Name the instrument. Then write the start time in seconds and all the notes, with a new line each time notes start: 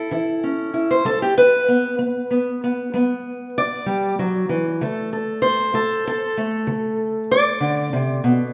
steel-string acoustic guitar
Already playing: E4 A4
0.11 E3 E4
0.44 C#4
0.74 E4
0.91 C5
1.05 G3 A4
1.22 G4
1.38 B4
1.68 B3
1.99 B3
2.31 B3
2.64 B3
2.94 G3 B3
3.58 D5
3.86 G3
4.19 F#3
4.49 E3
4.81 D3 A3 A4
5.13 A4
5.42 C5
5.74 A3 A4
6.07 A4
6.37 A3
6.67 D3
7.31 D5
7.60 D3
7.93 C3
8.24 B2